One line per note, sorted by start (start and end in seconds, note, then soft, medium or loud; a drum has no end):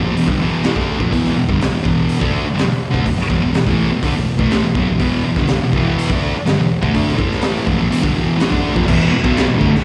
0.03 0.14 A#2 medium
0.03 0.15 F3 medium
0.15 0.26 E2 medium
0.15 0.27 B2 medium
0.15 open hi-hat soft
0.28 0.39 G2 medium
0.28 0.39 D3 loud
0.28 kick loud
0.41 0.63 E2 medium
0.41 0.64 B2 medium
0.41 0.64 E3 medium
0.64 0.75 A2 medium
0.64 0.76 E3 medium
0.64 snare loud
0.64 open hi-hat soft
0.76 0.99 D3 medium
0.76 0.99 A3 medium
0.76 1.00 D4 medium
0.76 kick loud
1.00 1.11 A#2 medium
1.00 1.11 F3 medium
1.00 kick loud
1.11 1.33 E2 medium
1.11 1.34 B2 medium
1.11 1.36 E3 loud
1.11 kick loud
1.11 open hi-hat medium
1.25 snare soft
1.34 1.47 E2 medium
1.34 1.47 B2 medium
1.49 1.60 G2 medium
1.49 1.60 D3 medium
1.49 kick loud
1.61 1.71 E2 medium
1.61 1.71 B2 medium
1.61 snare loud
1.61 open hi-hat medium
1.72 1.82 E2 medium
1.72 1.83 B2 medium
1.83 2.20 E2 medium
1.83 2.20 B2 medium
1.83 2.20 E3 medium
1.83 kick loud
2.09 open hi-hat medium
2.20 2.44 D3 medium
2.20 2.44 A3 medium
2.20 2.45 D4 medium
2.20 kick loud
2.45 muted distorted electric guitar stroke medium
2.54 2.65 G2 medium
2.54 2.66 D3 medium
2.58 snare loud
2.58 open hi-hat medium
2.66 2.87 E2 medium
2.66 2.87 B2 medium
2.91 3.04 D3 medium
2.91 3.05 A3 medium
2.91 kick loud
3.05 muted distorted electric guitar stroke medium
3.05 kick medium
3.05 open hi-hat medium
3.16 muted distorted electric guitar stroke medium
3.16 snare soft
3.29 3.41 E2 medium
3.29 3.42 B2 loud
3.29 kick loud
3.42 3.54 E2 medium
3.42 3.54 B2 medium
3.54 3.67 E2 medium
3.54 3.66 B2 medium
3.54 snare loud
3.54 open hi-hat medium
3.67 3.90 A2 medium
3.67 3.91 E3 medium
3.67 3.91 A3 medium
3.67 kick loud
3.91 4.03 E2 medium
3.91 4.03 B2 medium
4.03 4.15 D3 medium
4.03 4.16 A3 loud
4.03 kick loud
4.03 open hi-hat medium
4.17 4.35 E2 medium
4.17 4.35 B2 medium
4.39 4.63 A2 medium
4.39 4.63 E3 medium
4.39 4.63 A3 loud
4.39 kick loud
4.51 snare loud
4.51 open hi-hat medium
4.65 4.76 E2 medium
4.65 4.75 B2 medium
4.75 4.87 B2 medium
4.75 4.88 F#3 medium
4.75 kick loud
4.89 4.99 E2 medium
4.89 5.00 B2 medium
4.99 5.23 E2 medium
4.99 5.24 B2 medium
4.99 5.24 E3 loud
4.99 kick medium
4.99 open hi-hat soft
5.24 5.36 E2 medium
5.24 5.37 B2 medium
5.36 5.48 G2 medium
5.36 5.49 D3 loud
5.36 kick loud
5.36 snare soft
5.47 snare loud
5.47 open hi-hat soft
5.53 5.62 E2 medium
5.53 5.62 B2 medium
5.63 5.73 E2 medium
5.63 5.74 B2 medium
5.73 6.09 E2 medium
5.73 6.09 B2 medium
5.73 6.09 E3 loud
5.73 kick loud
5.99 open hi-hat medium
6.09 6.33 D3 medium
6.09 6.33 A3 medium
6.09 6.34 D4 loud
6.09 kick loud
6.34 muted distorted electric guitar stroke medium
6.45 6.57 G2 medium
6.45 6.57 D3 medium
6.45 snare loud
6.45 open hi-hat medium
6.59 6.77 E2 medium
6.59 6.78 B2 medium
6.81 6.93 D3 medium
6.81 6.93 A3 medium
6.81 kick loud
6.94 7.16 D3 medium
6.94 7.17 A3 loud
6.94 7.18 D4 loud
6.94 kick loud
6.94 open hi-hat medium
7.08 snare soft
7.16 7.65 A2 medium
7.16 7.65 E3 loud
7.16 7.66 A3 medium
7.16 kick loud
7.32 snare soft
7.42 snare loud
7.42 open hi-hat medium
7.66 7.78 E2 medium
7.66 7.77 B2 loud
7.66 kick loud
7.78 7.89 A#2 loud
7.78 7.90 F3 medium
7.90 8.01 E2 loud
7.90 8.02 B2 loud
7.90 open hi-hat medium
8.01 8.12 G2 medium
8.01 8.13 D3 medium
8.01 kick loud
8.12 8.37 E2 medium
8.12 8.36 B2 medium
8.12 8.36 E3 loud
8.37 8.49 A2 loud
8.37 8.49 E3 medium
8.37 open hi-hat medium
8.41 snare loud
8.50 8.73 D3 medium
8.50 8.75 A3 loud
8.50 8.75 D4 loud
8.50 kick loud
8.73 8.86 A#2 medium
8.73 8.86 F3 medium
8.73 kick loud
8.85 9.10 E2 medium
8.85 9.10 B2 loud
8.85 9.11 E3 loud
8.85 kick loud
8.85 crash loud
8.85 crash medium
9.11 9.23 E2 medium
9.11 9.22 B2 medium
9.24 9.47 B2 loud
9.24 9.47 F#3 loud
9.24 9.47 B3 loud
9.24 kick loud
9.37 snare loud
9.37 crash medium
9.47 9.59 E2 medium
9.47 9.57 B2 medium
9.58 9.70 D3 loud
9.58 9.70 A3 loud
9.58 kick medium
9.71 muted distorted electric guitar stroke medium
9.71 snare soft